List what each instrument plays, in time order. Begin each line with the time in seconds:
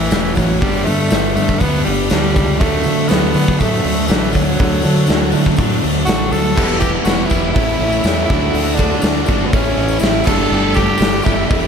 Already playing: fingered electric bass A1, distorted electric guitar A2 E3 A3 C#4 E4, tenor saxophone E3, tonewheel organ E3 A3 C#4 A4, steel-string acoustic guitar A3 C#4 E4
0.11 fingered electric bass E1, steel-string acoustic guitar A2 E3 A3 C#4 E4, snare, open hi-hat, tambourine
0.35 fingered electric bass A1, overdriven electric guitar A2 E3, tenor saxophone F#3, steel-string acoustic guitar A3 C#4 E4, kick, open hi-hat, tambourine
0.60 fingered electric bass G1, overdriven electric guitar G2 D3, tenor saxophone G3, steel-string acoustic guitar G3 B3 D4 A4, tonewheel organ G3 B3 D4 A4, kick, open hi-hat, tambourine
0.84 fingered electric bass G2, overdriven electric guitar G2 D3, tenor saxophone A3, steel-string acoustic guitar A4, open hi-hat, tambourine
0.88 steel-string acoustic guitar B3 D4
1.10 fingered electric bass G1, overdriven electric guitar G2 D3, steel-string acoustic guitar G3 B3 D4 A4, snare, open hi-hat, tambourine
1.35 overdriven electric guitar G2 D3, fingered electric bass G2, tenor saxophone A3, steel-string acoustic guitar B3 D4 A4, open hi-hat, tambourine
1.49 kick
1.59 fingered electric bass D2, overdriven electric guitar G2 D3, steel-string acoustic guitar G3 B3 D4 A4, tenor saxophone B3, kick, open hi-hat, tambourine
1.74 snare
1.84 fingered electric bass G1, overdriven electric guitar G2 D3, tenor saxophone G3, steel-string acoustic guitar D4 A4, open hi-hat
1.88 steel-string acoustic guitar B3
2.10 fingered electric bass D2, overdriven electric guitar G2 D3, steel-string acoustic guitar G3 B3 D4 A4, tenor saxophone G3, snare, open hi-hat, tambourine
2.35 fingered electric bass C#2, overdriven electric guitar G2 D3, steel-string acoustic guitar B3 D4 A4, kick, open hi-hat, tambourine
2.60 fingered electric bass D2, steel-string acoustic guitar D3 F#3 A3 D4 F#4, tonewheel organ F#3 A3 D4 A4, tenor saxophone A3, upright piano D4 F#4 A4, kick, open hi-hat, tambourine
2.83 overdriven electric guitar D3 F#3, fingered electric bass D3, steel-string acoustic guitar A3 D4 F#4, upright piano D4 F#4 A4, open hi-hat, tambourine
3.08 fingered electric bass D2, steel-string acoustic guitar D3 F#3 A3 D4 F#4, tenor saxophone B3, upright piano D4 F#4 A4, snare, open hi-hat, tambourine
3.34 overdriven electric guitar D3 F#3, fingered electric bass D3, steel-string acoustic guitar A3 D4 F#4, open hi-hat, tambourine
3.48 kick
3.59 fingered electric bass A2, overdriven electric guitar D3, steel-string acoustic guitar F#3 A3 D4 F#4, tenor saxophone A3, upright piano D4 F#4 A4, kick, open hi-hat, tambourine
3.84 fingered electric bass D2, overdriven electric guitar D3 F#3, steel-string acoustic guitar D4 F#4, open hi-hat, tambourine
3.88 steel-string acoustic guitar A3
4.07 fingered electric bass A1, steel-string acoustic guitar D3 F#3 A3 D4 F#4, tenor saxophone E3, upright piano D4 F#4 A4, open hi-hat, tambourine
4.11 snare
4.33 fingered electric bass D2, overdriven electric guitar D3 F#3, tenor saxophone F#3, steel-string acoustic guitar A3 D4 F#4, kick, open hi-hat, tambourine
4.58 fingered electric bass D2, steel-string acoustic guitar D3 F#3 A3 D4 F#4, upright piano D4 F#4 A4, kick, open hi-hat
4.82 overdriven electric guitar D3 F#3, fingered electric bass D3, steel-string acoustic guitar A3 D4 F#4, upright piano D4 F#4 A4, open hi-hat, tambourine
5.07 fingered electric bass D2, steel-string acoustic guitar D3 F#3 A3 D4 F#4, upright piano D4 F#4 A4, snare, open hi-hat, tambourine
5.31 overdriven electric guitar D3 F#3, fingered electric bass D3, steel-string acoustic guitar A3 D4 F#4, open hi-hat, tambourine
5.46 kick
5.56 fingered electric bass A2, overdriven electric guitar D3, steel-string acoustic guitar F#3 A3 D4 F#4, upright piano D4 F#4 A4, kick, open hi-hat, tambourine
5.72 snare
5.81 fingered electric bass D2, overdriven electric guitar D3 F#3, steel-string acoustic guitar A3 D4 F#4, open hi-hat, tambourine
6.05 fingered electric bass A1, steel-string acoustic guitar D3 F#3 A3 D4 F#4, upright piano D4 F#4 A4, tenor saxophone F#4, open hi-hat, tambourine
6.09 snare
6.31 fingered electric bass D2, overdriven electric guitar D3 F#3, steel-string acoustic guitar A3 D4 F#4, tenor saxophone A4, open hi-hat, tambourine
6.54 fingered electric bass E1, steel-string acoustic guitar E2 B2 E3 G3 B3 E4, tonewheel organ E3 G3 B3 G4, upright piano B3 E4 G4 B4, kick, crash, tambourine
6.79 steel-string acoustic guitar E3 G3 B3 E4, upright piano B3 E4 G4 B4, tenor saxophone G4, kick, tambourine
6.95 tambourine
7.04 fingered electric bass E1, steel-string acoustic guitar E3 G3 B3 E4, upright piano B3 E4 G4 B4, tenor saxophone F#4, snare, open hi-hat, tambourine
7.26 steel-string acoustic guitar E3 G3 B3 E4, tenor saxophone E4, tambourine
7.31 fingered electric bass E1, kick
7.53 fingered electric bass A1, steel-string acoustic guitar A2 E3 A3 C#4 E4, tonewheel organ E3 A3 C#4 A4, upright piano A3 C#4 E4 A4, tenor saxophone E4, kick, open hi-hat, tambourine
7.69 tambourine
7.79 fingered electric bass A1, steel-string acoustic guitar A3 C#4 E4
7.93 tambourine
8.03 fingered electric bass E2, overdriven electric guitar A2, steel-string acoustic guitar E3 A3 C#4 E4, upright piano A3 C#4 E4 A4, snare, open hi-hat, tambourine
8.25 upright piano A3, tenor saxophone E4, steel-string acoustic guitar F#4
8.29 fingered electric bass D2, overdriven electric guitar D3, tonewheel organ F#3 A3 D4 A4, steel-string acoustic guitar A3 D4, upright piano D4 F#4 A4, kick, snare
8.53 fingered electric bass D2, steel-string acoustic guitar D3 A3 D4 F#4, open hi-hat, tambourine
8.75 upright piano A3 D4, tenor saxophone D4, overdriven electric guitar D4, tambourine
8.79 steel-string acoustic guitar A3 F#4, upright piano F#4 A4, kick
8.90 tambourine
8.99 fingered electric bass D2, upright piano A3 D4 F#4 A4, tenor saxophone D4, tambourine
9.03 steel-string acoustic guitar D3 A3 D4 F#4, snare, open hi-hat
9.13 tambourine
9.26 fingered electric bass G1, distorted electric guitar D3, steel-string acoustic guitar A3 D4 F#4, kick, tambourine
9.38 tambourine
9.46 tenor saxophone B3
9.51 fingered electric bass A1, steel-string acoustic guitar A2 E3 A3 C#4 E4, tonewheel organ E3 A3 C#4 A4, upright piano A3 C#4 E4 A4, tenor saxophone C#4, kick, open hi-hat, tambourine
9.64 tambourine
9.76 fingered electric bass A1, steel-string acoustic guitar A3 C#4 E4
9.88 tambourine
9.99 fingered electric bass A1, overdriven electric guitar A2, steel-string acoustic guitar E3 A3 C#4, upright piano A3 C#4 E4 A4, tenor saxophone E4, open hi-hat, tambourine
10.04 steel-string acoustic guitar E4, snare
10.13 tambourine
10.24 fingered electric bass G1, upright piano A3 D4 G4 A4, steel-string acoustic guitar G4, tenor saxophone A4, kick, tambourine, crash
10.28 overdriven electric guitar G3, tonewheel organ G3 A3 D4 A4, steel-string acoustic guitar A3 D4
10.49 fingered electric bass G1, steel-string acoustic guitar G3 A3, tambourine
10.54 steel-string acoustic guitar D4 G4
10.74 upright piano A3 D4 G4 A4, tenor saxophone G4, steel-string acoustic guitar G4, kick, tambourine
10.79 steel-string acoustic guitar A3 D4
10.87 tambourine
10.98 fingered electric bass G1, upright piano A3 D4 G4 A4, open hi-hat, tambourine
11.02 steel-string acoustic guitar G3 A3 D4 G4, snare
11.11 tambourine
11.23 fingered electric bass G1, distorted electric guitar G3, steel-string acoustic guitar D4 G4, tenor saxophone E4, kick, tambourine
11.27 steel-string acoustic guitar A3
11.35 tambourine
11.47 fingered electric bass E1, steel-string acoustic guitar G3 A3 D4 G4, upright piano A3 D4 A4, tenor saxophone E4, kick, open hi-hat, tambourine
11.51 upright piano G4
11.60 tambourine